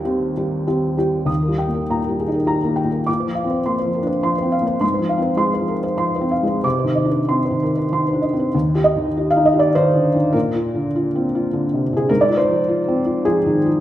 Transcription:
0.00 1.24 D#2 medium
0.00 0.37 G3 soft
0.00 0.05 G4 soft
0.00 0.66 A#4 medium
0.05 0.32 C4 soft
0.05 0.32 G4 soft
0.37 0.64 G3 soft
0.37 0.64 G4 soft
0.67 0.95 C4 soft
0.67 0.95 G4 soft
0.97 1.25 G3 soft
0.97 1.26 G4 soft
1.26 3.02 D#2 soft
1.26 1.52 D#6 soft
1.42 1.67 A#4 soft
1.48 1.81 G3 soft
1.58 1.83 G5 soft
1.68 2.00 A#3 soft
1.74 1.98 A#4 soft
1.90 2.21 A#2 soft
1.90 2.14 A#5 soft
2.04 2.28 A#4 soft
2.09 2.40 G3 soft
2.20 2.34 G#4 soft
2.28 2.60 D#4 soft
2.34 2.58 A#4 soft
2.46 2.79 G3 soft
2.46 2.72 A#5 soft
2.62 2.98 A#3 soft
2.62 2.87 A#4 soft
2.76 3.01 G5 soft
2.84 3.05 A#2 soft
2.90 3.07 A#4 soft
3.07 4.78 A#2 soft
3.07 3.31 D6 soft
3.20 3.45 C5 soft
3.27 3.58 F3 soft
3.35 3.59 F5 soft
3.44 3.77 C4 soft
3.50 3.74 C5 soft
3.66 3.97 A#3 soft
3.66 3.89 C6 soft
3.79 4.03 C5 soft
3.85 4.16 F3 soft
3.94 4.09 A#4 soft
4.02 4.35 D4 soft
4.07 4.32 C5 soft
4.23 4.55 F3 soft
4.23 4.47 C6 soft
4.38 4.62 C5 soft
4.42 4.74 C4 soft
4.52 4.76 F5 soft
4.61 4.82 A#3 soft
4.67 4.82 C5 soft
4.81 6.60 G#2 medium
4.81 5.05 C6 medium
4.94 5.19 C5 soft
4.99 5.32 F3 soft
5.09 5.34 F5 soft
5.18 5.51 C4 soft
5.22 5.48 C5 soft
5.37 5.71 G#3 soft
5.37 5.63 C6 medium
5.54 5.79 C5 soft
5.59 5.93 F3 soft
5.68 5.85 A#4 soft
5.83 6.10 C5 soft
5.97 6.33 F3 soft
5.97 6.25 C6 medium
6.16 6.42 C5 soft
6.21 6.55 C4 soft
6.31 6.57 F5 soft
6.43 6.64 G#3 soft
6.43 6.64 C5 soft
6.64 8.49 C3 medium
6.64 6.90 D6 soft
6.79 7.06 C5 soft
6.84 7.19 D#3 soft
6.95 7.22 D#5 soft
7.05 7.40 D4 soft
7.11 7.38 C5 soft
7.29 7.63 C4 soft
7.29 7.54 C6 soft
7.45 7.70 C5 soft
7.51 7.84 D#3 soft
7.62 7.77 A#4 soft
7.77 8.02 C5 soft
7.92 8.25 D#3 soft
7.92 8.17 C6 soft
8.08 8.33 C5 soft
8.13 8.46 D4 soft
8.22 8.47 D#5 soft
8.33 8.54 C4 soft
8.39 8.54 C5 soft
8.54 10.30 D#2 medium
8.75 9.07 G4 soft
8.84 9.29 D#5 medium
8.96 9.27 D#3 soft
9.17 9.48 G4 soft
9.31 9.45 F5 medium
9.36 9.67 D#4 soft
9.45 9.60 D#5 medium
9.53 9.86 G4 soft
9.59 9.74 D5 medium
9.75 10.07 D#3 soft
9.75 10.35 C5 medium
9.94 10.14 D3 soft
10.15 10.34 D#3 soft
10.33 12.05 A#2 medium
10.33 11.94 A#4 medium
10.55 10.86 F4 soft
10.75 11.06 D3 soft
10.96 11.26 F4 soft
11.15 11.45 C4 soft
11.35 11.65 F4 soft
11.53 11.83 D3 soft
11.74 11.92 C3 soft
11.93 12.11 D3 soft
11.93 12.10 G#4 medium
12.09 13.80 G#2 medium
12.09 12.24 A#4 medium
12.21 12.37 D5 medium
12.28 12.60 F4 soft
12.37 13.26 C5 medium
12.48 12.80 F3 soft
12.68 13.00 F4 soft
12.88 13.20 C4 soft
13.05 13.38 F4 soft
13.25 13.58 F3 soft
13.25 13.80 G#4 medium
13.46 13.66 D#3 soft
13.66 13.80 F3 soft

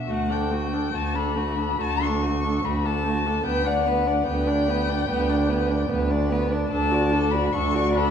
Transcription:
0.00 0.12 E5 soft
0.08 0.85 D2 soft
0.08 0.32 A3 soft
0.08 0.31 F#4 soft
0.08 0.33 F#5 medium
0.30 0.52 D4 soft
0.30 0.55 A4 soft
0.30 0.96 G5 medium
0.51 0.75 A3 soft
0.51 0.75 F#4 soft
0.73 0.92 D4 soft
0.73 0.93 A4 soft
0.93 1.70 D2 soft
0.93 1.16 A3 soft
0.93 1.17 F#4 soft
0.93 1.17 A5 medium
1.14 1.38 D4 soft
1.14 1.39 A4 soft
1.14 1.82 B5 medium
1.36 1.58 A3 soft
1.36 1.61 F#4 soft
1.56 1.78 D4 soft
1.56 1.79 A4 soft
1.79 2.54 D2 medium
1.79 2.03 A3 soft
1.79 2.03 F#4 soft
1.79 2.04 A5 medium
2.01 2.24 D4 soft
2.01 2.25 A4 soft
2.01 2.66 C#6 medium
2.22 2.45 A3 soft
2.22 2.46 F#4 soft
2.44 2.64 D4 soft
2.44 2.65 A4 soft
2.63 3.36 D2 soft
2.63 2.86 A3 soft
2.63 2.87 F#4 soft
2.63 2.87 B5 medium
2.84 3.06 D4 soft
2.84 3.09 A4 soft
2.84 3.46 A5 medium
3.04 3.27 A3 soft
3.04 3.28 F#4 soft
3.25 3.43 D4 soft
3.25 3.45 A4 soft
3.44 4.18 D2 soft
3.44 3.65 B3 soft
3.44 3.68 B4 soft
3.44 3.68 G5 medium
3.64 3.87 D4 soft
3.64 3.89 D5 soft
3.64 4.27 F#5 medium
3.85 4.08 B3 soft
3.85 4.09 B4 soft
4.06 4.25 D4 soft
4.06 4.28 D5 soft
4.26 5.00 D2 medium
4.26 4.48 B3 soft
4.26 4.49 B4 soft
4.26 5.88 G5 medium
4.47 4.70 D4 soft
4.47 4.72 D5 soft
4.68 4.90 B3 soft
4.68 4.91 B4 soft
4.89 5.08 D4 soft
4.89 5.09 D5 soft
5.09 5.81 D2 medium
5.09 5.30 B3 soft
5.09 5.32 B4 soft
5.29 5.51 D4 soft
5.29 5.51 D5 soft
5.49 5.72 B3 soft
5.49 5.72 B4 soft
5.70 5.89 D4 soft
5.70 5.91 D5 soft
5.89 6.62 D2 medium
5.89 6.11 B3 soft
5.89 6.13 B4 soft
6.10 6.32 D4 soft
6.10 6.34 D5 soft
6.30 6.52 B3 soft
6.30 6.53 B4 soft
6.50 6.70 D4 soft
6.50 6.72 D5 soft
6.70 7.44 D2 medium
6.70 6.92 D4 medium
6.70 6.96 A4 soft
6.70 7.32 A5 medium
6.91 7.13 F#4 soft
6.91 7.15 D5 soft
7.12 7.35 D4 soft
7.12 7.35 A4 soft
7.31 7.54 F#4 soft
7.31 7.54 D5 soft
7.31 7.54 B5 medium
7.52 8.11 D2 medium
7.52 7.76 D4 soft
7.52 7.78 A4 soft
7.52 7.94 C#6 medium
7.74 7.97 F#4 soft
7.74 7.99 D5 soft
7.95 8.11 D4 soft
7.95 8.11 A4 medium
7.95 8.11 B5 medium

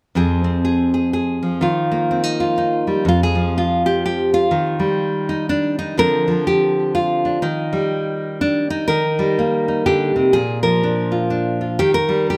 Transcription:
0.15 1.61 F2 medium
0.15 1.42 F3 soft
0.15 0.43 C4 medium
0.15 0.63 G#4 medium
0.44 1.58 C4 soft
0.65 0.93 G#4 medium
0.94 1.12 G#4 medium
1.13 1.59 G#4 medium
1.43 2.87 F3 soft
1.61 3.04 D#3 medium
1.61 2.39 F4 medium
1.92 3.07 A#3 soft
2.11 2.23 C4 medium
2.23 2.56 D#4 soft
2.40 3.07 F4 medium
2.58 3.04 D#4 medium
2.87 3.04 G3 medium
3.05 4.51 F2 medium
3.05 3.22 F4 medium
3.23 3.56 G#4 medium
3.35 4.79 F3 medium
3.58 3.86 F4 medium
3.86 4.04 G4 medium
4.06 4.33 G4 medium
4.34 5.79 F4 medium
4.51 5.95 D#3 medium
4.79 5.95 G3 medium
5.29 5.49 D#4 medium
5.49 5.78 D4 medium
5.79 5.98 D#4 medium
5.97 7.41 D3 medium
5.97 6.26 F3 soft
5.97 7.42 C4 soft
5.97 7.24 D4 soft
5.97 6.47 A#4 loud
6.28 7.44 F3 medium
6.47 6.94 G4 medium
6.95 7.43 F4 medium
7.25 7.42 D4 soft
7.42 8.86 D#3 medium
7.42 8.40 D#4 medium
7.73 8.87 G3 medium
8.41 8.70 D4 medium
8.70 9.38 D#4 medium
8.88 9.85 D#3 medium
8.88 9.85 A#4 loud
9.19 10.32 G3 medium
9.39 10.83 A#3 soft
9.68 10.33 D#4 soft
9.86 10.15 D3 medium
9.86 10.33 G4 medium
10.16 10.35 C3 medium
10.33 11.77 A#2 medium
10.33 10.62 G#4 medium
10.63 11.79 F3 medium
10.63 11.60 A#4 medium
10.83 11.29 D4 soft
11.12 11.60 F4 soft
11.30 11.77 D4 soft
11.61 11.77 F4 soft
11.79 12.37 D#3 medium
11.79 11.94 G4 loud
11.94 12.28 A#4 loud
12.09 12.37 G3 medium
12.30 12.37 G4 medium

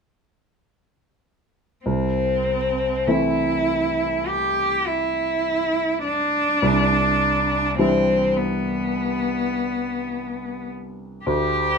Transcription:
1.86 3.03 C2 soft
1.86 3.09 C4 soft
3.07 6.59 E3 soft
3.07 6.59 A3 soft
3.07 6.59 C4 soft
3.07 4.29 E4 soft
3.07 6.59 E4 soft
4.27 4.88 G4 medium
4.87 6.04 E4 soft
6.05 7.75 D4 medium
6.62 7.75 C2 soft
7.78 11.22 E3 soft
7.78 11.22 G3 soft
7.78 8.39 C4 medium
7.78 11.22 D4 soft
7.78 11.22 E4 soft
8.37 10.69 B3 medium
11.25 11.78 D2 soft
11.25 11.78 G4 medium

